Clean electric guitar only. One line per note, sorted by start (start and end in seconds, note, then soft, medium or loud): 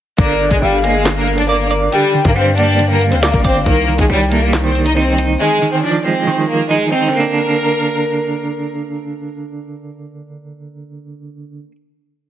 0.18 0.39 D3 medium
0.40 1.04 D3 medium
0.84 1.92 A#3 medium
1.05 1.91 D3 medium
1.49 1.69 D5 loud
1.71 2.79 D5 medium
1.92 2.13 D3 medium
2.14 2.78 D3 medium
2.36 3.45 G3 medium
2.58 3.66 A#3 medium
2.79 3.66 D3 medium
3.23 3.43 D5 loud
3.44 3.66 D5 medium
3.66 3.87 D#3 medium
3.88 4.52 D#3 medium
4.10 5.18 G3 loud
4.31 5.40 A#3 medium
4.53 5.39 D#3 loud
4.97 5.17 D#4 medium
5.18 5.40 D#4 medium
5.40 5.61 D#3 medium
5.62 6.26 D#3 medium
5.84 6.92 F3 medium
6.05 7.12 G#3 medium
6.27 7.14 D#3 medium
6.71 6.91 D#4 loud
6.92 7.14 D#4 medium
7.08 11.63 D3 medium
7.12 7.16 G3 medium
7.16 11.71 A#3 medium
7.16 11.75 D4 medium